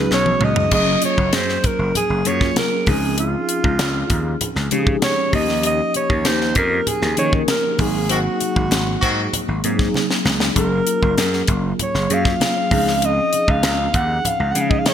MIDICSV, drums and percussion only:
0, 0, Header, 1, 2, 480
1, 0, Start_track
1, 0, Key_signature, -5, "major"
1, 0, Tempo, 614754
1, 562, Time_signature, 4, 2, 24, 8
1, 11664, End_track
2, 0, Start_track
2, 0, Title_t, "Drums"
2, 85, Note_on_c, 9, 38, 48
2, 163, Note_off_c, 9, 38, 0
2, 202, Note_on_c, 9, 48, 56
2, 280, Note_off_c, 9, 48, 0
2, 317, Note_on_c, 9, 45, 76
2, 396, Note_off_c, 9, 45, 0
2, 438, Note_on_c, 9, 43, 81
2, 516, Note_off_c, 9, 43, 0
2, 556, Note_on_c, 9, 49, 86
2, 560, Note_on_c, 9, 36, 90
2, 634, Note_off_c, 9, 49, 0
2, 638, Note_off_c, 9, 36, 0
2, 794, Note_on_c, 9, 42, 61
2, 812, Note_on_c, 9, 62, 33
2, 872, Note_off_c, 9, 42, 0
2, 890, Note_off_c, 9, 62, 0
2, 921, Note_on_c, 9, 36, 83
2, 999, Note_off_c, 9, 36, 0
2, 1036, Note_on_c, 9, 42, 87
2, 1038, Note_on_c, 9, 38, 101
2, 1044, Note_on_c, 9, 63, 62
2, 1114, Note_off_c, 9, 42, 0
2, 1116, Note_off_c, 9, 38, 0
2, 1122, Note_off_c, 9, 63, 0
2, 1162, Note_on_c, 9, 38, 33
2, 1240, Note_off_c, 9, 38, 0
2, 1279, Note_on_c, 9, 42, 71
2, 1282, Note_on_c, 9, 36, 89
2, 1357, Note_off_c, 9, 42, 0
2, 1360, Note_off_c, 9, 36, 0
2, 1525, Note_on_c, 9, 42, 78
2, 1525, Note_on_c, 9, 62, 44
2, 1525, Note_on_c, 9, 64, 63
2, 1603, Note_off_c, 9, 42, 0
2, 1603, Note_off_c, 9, 62, 0
2, 1603, Note_off_c, 9, 64, 0
2, 1758, Note_on_c, 9, 42, 62
2, 1773, Note_on_c, 9, 62, 41
2, 1836, Note_off_c, 9, 42, 0
2, 1851, Note_off_c, 9, 62, 0
2, 1881, Note_on_c, 9, 36, 83
2, 1884, Note_on_c, 9, 38, 29
2, 1960, Note_off_c, 9, 36, 0
2, 1962, Note_off_c, 9, 38, 0
2, 2000, Note_on_c, 9, 63, 63
2, 2001, Note_on_c, 9, 42, 72
2, 2004, Note_on_c, 9, 38, 103
2, 2079, Note_off_c, 9, 42, 0
2, 2079, Note_off_c, 9, 63, 0
2, 2082, Note_off_c, 9, 38, 0
2, 2237, Note_on_c, 9, 46, 72
2, 2242, Note_on_c, 9, 36, 96
2, 2245, Note_on_c, 9, 63, 67
2, 2315, Note_off_c, 9, 46, 0
2, 2320, Note_off_c, 9, 36, 0
2, 2323, Note_off_c, 9, 63, 0
2, 2481, Note_on_c, 9, 42, 95
2, 2559, Note_off_c, 9, 42, 0
2, 2722, Note_on_c, 9, 42, 62
2, 2801, Note_off_c, 9, 42, 0
2, 2843, Note_on_c, 9, 36, 81
2, 2921, Note_off_c, 9, 36, 0
2, 2960, Note_on_c, 9, 42, 86
2, 2962, Note_on_c, 9, 38, 103
2, 2968, Note_on_c, 9, 63, 62
2, 3038, Note_off_c, 9, 42, 0
2, 3040, Note_off_c, 9, 38, 0
2, 3046, Note_off_c, 9, 63, 0
2, 3199, Note_on_c, 9, 42, 74
2, 3202, Note_on_c, 9, 36, 84
2, 3277, Note_off_c, 9, 42, 0
2, 3280, Note_off_c, 9, 36, 0
2, 3442, Note_on_c, 9, 42, 88
2, 3445, Note_on_c, 9, 62, 46
2, 3445, Note_on_c, 9, 64, 62
2, 3520, Note_off_c, 9, 42, 0
2, 3523, Note_off_c, 9, 62, 0
2, 3523, Note_off_c, 9, 64, 0
2, 3558, Note_on_c, 9, 38, 33
2, 3636, Note_off_c, 9, 38, 0
2, 3679, Note_on_c, 9, 42, 66
2, 3689, Note_on_c, 9, 62, 41
2, 3757, Note_off_c, 9, 42, 0
2, 3767, Note_off_c, 9, 62, 0
2, 3800, Note_on_c, 9, 36, 89
2, 3878, Note_off_c, 9, 36, 0
2, 3919, Note_on_c, 9, 63, 65
2, 3920, Note_on_c, 9, 42, 79
2, 3923, Note_on_c, 9, 38, 106
2, 3997, Note_off_c, 9, 63, 0
2, 3998, Note_off_c, 9, 42, 0
2, 4001, Note_off_c, 9, 38, 0
2, 4162, Note_on_c, 9, 46, 72
2, 4162, Note_on_c, 9, 63, 62
2, 4163, Note_on_c, 9, 36, 97
2, 4240, Note_off_c, 9, 46, 0
2, 4240, Note_off_c, 9, 63, 0
2, 4241, Note_off_c, 9, 36, 0
2, 4285, Note_on_c, 9, 38, 35
2, 4363, Note_off_c, 9, 38, 0
2, 4399, Note_on_c, 9, 42, 93
2, 4477, Note_off_c, 9, 42, 0
2, 4641, Note_on_c, 9, 42, 60
2, 4651, Note_on_c, 9, 62, 34
2, 4719, Note_off_c, 9, 42, 0
2, 4729, Note_off_c, 9, 62, 0
2, 4762, Note_on_c, 9, 36, 88
2, 4840, Note_off_c, 9, 36, 0
2, 4879, Note_on_c, 9, 63, 66
2, 4880, Note_on_c, 9, 42, 92
2, 4881, Note_on_c, 9, 38, 104
2, 4957, Note_off_c, 9, 63, 0
2, 4958, Note_off_c, 9, 42, 0
2, 4960, Note_off_c, 9, 38, 0
2, 5005, Note_on_c, 9, 38, 33
2, 5083, Note_off_c, 9, 38, 0
2, 5116, Note_on_c, 9, 42, 75
2, 5121, Note_on_c, 9, 36, 89
2, 5194, Note_off_c, 9, 42, 0
2, 5199, Note_off_c, 9, 36, 0
2, 5363, Note_on_c, 9, 42, 83
2, 5363, Note_on_c, 9, 62, 46
2, 5363, Note_on_c, 9, 64, 65
2, 5441, Note_off_c, 9, 42, 0
2, 5441, Note_off_c, 9, 62, 0
2, 5441, Note_off_c, 9, 64, 0
2, 5480, Note_on_c, 9, 38, 32
2, 5558, Note_off_c, 9, 38, 0
2, 5598, Note_on_c, 9, 42, 60
2, 5615, Note_on_c, 9, 62, 42
2, 5676, Note_off_c, 9, 42, 0
2, 5693, Note_off_c, 9, 62, 0
2, 5722, Note_on_c, 9, 36, 85
2, 5800, Note_off_c, 9, 36, 0
2, 5839, Note_on_c, 9, 63, 62
2, 5840, Note_on_c, 9, 42, 78
2, 5843, Note_on_c, 9, 38, 103
2, 5917, Note_off_c, 9, 63, 0
2, 5918, Note_off_c, 9, 42, 0
2, 5921, Note_off_c, 9, 38, 0
2, 6077, Note_on_c, 9, 63, 66
2, 6081, Note_on_c, 9, 46, 77
2, 6083, Note_on_c, 9, 36, 95
2, 6155, Note_off_c, 9, 63, 0
2, 6159, Note_off_c, 9, 46, 0
2, 6161, Note_off_c, 9, 36, 0
2, 6321, Note_on_c, 9, 42, 96
2, 6399, Note_off_c, 9, 42, 0
2, 6563, Note_on_c, 9, 42, 61
2, 6571, Note_on_c, 9, 62, 33
2, 6641, Note_off_c, 9, 42, 0
2, 6649, Note_off_c, 9, 62, 0
2, 6686, Note_on_c, 9, 36, 84
2, 6764, Note_off_c, 9, 36, 0
2, 6801, Note_on_c, 9, 63, 61
2, 6807, Note_on_c, 9, 42, 87
2, 6809, Note_on_c, 9, 38, 100
2, 6879, Note_off_c, 9, 63, 0
2, 6885, Note_off_c, 9, 42, 0
2, 6887, Note_off_c, 9, 38, 0
2, 7048, Note_on_c, 9, 36, 89
2, 7050, Note_on_c, 9, 42, 73
2, 7126, Note_off_c, 9, 36, 0
2, 7128, Note_off_c, 9, 42, 0
2, 7287, Note_on_c, 9, 62, 44
2, 7287, Note_on_c, 9, 64, 62
2, 7290, Note_on_c, 9, 42, 86
2, 7366, Note_off_c, 9, 62, 0
2, 7366, Note_off_c, 9, 64, 0
2, 7368, Note_off_c, 9, 42, 0
2, 7526, Note_on_c, 9, 42, 63
2, 7533, Note_on_c, 9, 62, 41
2, 7604, Note_off_c, 9, 42, 0
2, 7611, Note_off_c, 9, 62, 0
2, 7646, Note_on_c, 9, 36, 84
2, 7649, Note_on_c, 9, 38, 30
2, 7724, Note_off_c, 9, 36, 0
2, 7727, Note_off_c, 9, 38, 0
2, 7763, Note_on_c, 9, 63, 67
2, 7773, Note_on_c, 9, 38, 51
2, 7841, Note_off_c, 9, 63, 0
2, 7851, Note_off_c, 9, 38, 0
2, 7890, Note_on_c, 9, 38, 61
2, 7968, Note_off_c, 9, 38, 0
2, 8004, Note_on_c, 9, 63, 62
2, 8008, Note_on_c, 9, 38, 82
2, 8082, Note_off_c, 9, 63, 0
2, 8086, Note_off_c, 9, 38, 0
2, 8123, Note_on_c, 9, 38, 82
2, 8201, Note_off_c, 9, 38, 0
2, 8246, Note_on_c, 9, 36, 95
2, 8246, Note_on_c, 9, 42, 94
2, 8324, Note_off_c, 9, 36, 0
2, 8324, Note_off_c, 9, 42, 0
2, 8484, Note_on_c, 9, 42, 63
2, 8562, Note_off_c, 9, 42, 0
2, 8609, Note_on_c, 9, 36, 84
2, 8687, Note_off_c, 9, 36, 0
2, 8726, Note_on_c, 9, 63, 68
2, 8729, Note_on_c, 9, 42, 86
2, 8731, Note_on_c, 9, 38, 102
2, 8804, Note_off_c, 9, 63, 0
2, 8807, Note_off_c, 9, 42, 0
2, 8809, Note_off_c, 9, 38, 0
2, 8849, Note_on_c, 9, 38, 34
2, 8927, Note_off_c, 9, 38, 0
2, 8959, Note_on_c, 9, 42, 75
2, 8966, Note_on_c, 9, 36, 85
2, 9037, Note_off_c, 9, 42, 0
2, 9044, Note_off_c, 9, 36, 0
2, 9209, Note_on_c, 9, 42, 82
2, 9210, Note_on_c, 9, 62, 47
2, 9210, Note_on_c, 9, 64, 65
2, 9287, Note_off_c, 9, 42, 0
2, 9288, Note_off_c, 9, 62, 0
2, 9288, Note_off_c, 9, 64, 0
2, 9327, Note_on_c, 9, 38, 34
2, 9405, Note_off_c, 9, 38, 0
2, 9449, Note_on_c, 9, 42, 67
2, 9454, Note_on_c, 9, 62, 42
2, 9527, Note_off_c, 9, 42, 0
2, 9532, Note_off_c, 9, 62, 0
2, 9567, Note_on_c, 9, 36, 88
2, 9570, Note_on_c, 9, 38, 29
2, 9645, Note_off_c, 9, 36, 0
2, 9648, Note_off_c, 9, 38, 0
2, 9685, Note_on_c, 9, 63, 65
2, 9691, Note_on_c, 9, 42, 78
2, 9694, Note_on_c, 9, 38, 94
2, 9763, Note_off_c, 9, 63, 0
2, 9769, Note_off_c, 9, 42, 0
2, 9772, Note_off_c, 9, 38, 0
2, 9924, Note_on_c, 9, 63, 66
2, 9926, Note_on_c, 9, 46, 78
2, 9927, Note_on_c, 9, 36, 98
2, 10002, Note_off_c, 9, 63, 0
2, 10004, Note_off_c, 9, 46, 0
2, 10005, Note_off_c, 9, 36, 0
2, 10052, Note_on_c, 9, 38, 35
2, 10130, Note_off_c, 9, 38, 0
2, 10167, Note_on_c, 9, 42, 94
2, 10246, Note_off_c, 9, 42, 0
2, 10406, Note_on_c, 9, 42, 63
2, 10415, Note_on_c, 9, 62, 35
2, 10484, Note_off_c, 9, 42, 0
2, 10493, Note_off_c, 9, 62, 0
2, 10525, Note_on_c, 9, 36, 92
2, 10603, Note_off_c, 9, 36, 0
2, 10644, Note_on_c, 9, 42, 86
2, 10646, Note_on_c, 9, 38, 112
2, 10647, Note_on_c, 9, 63, 67
2, 10722, Note_off_c, 9, 42, 0
2, 10724, Note_off_c, 9, 38, 0
2, 10725, Note_off_c, 9, 63, 0
2, 10884, Note_on_c, 9, 42, 71
2, 10886, Note_on_c, 9, 36, 89
2, 10962, Note_off_c, 9, 42, 0
2, 10964, Note_off_c, 9, 36, 0
2, 11125, Note_on_c, 9, 62, 46
2, 11125, Note_on_c, 9, 64, 66
2, 11129, Note_on_c, 9, 42, 88
2, 11203, Note_off_c, 9, 62, 0
2, 11203, Note_off_c, 9, 64, 0
2, 11207, Note_off_c, 9, 42, 0
2, 11363, Note_on_c, 9, 42, 65
2, 11368, Note_on_c, 9, 62, 43
2, 11441, Note_off_c, 9, 42, 0
2, 11446, Note_off_c, 9, 62, 0
2, 11483, Note_on_c, 9, 36, 91
2, 11561, Note_off_c, 9, 36, 0
2, 11597, Note_on_c, 9, 63, 63
2, 11601, Note_on_c, 9, 42, 77
2, 11604, Note_on_c, 9, 38, 102
2, 11664, Note_off_c, 9, 38, 0
2, 11664, Note_off_c, 9, 42, 0
2, 11664, Note_off_c, 9, 63, 0
2, 11664, End_track
0, 0, End_of_file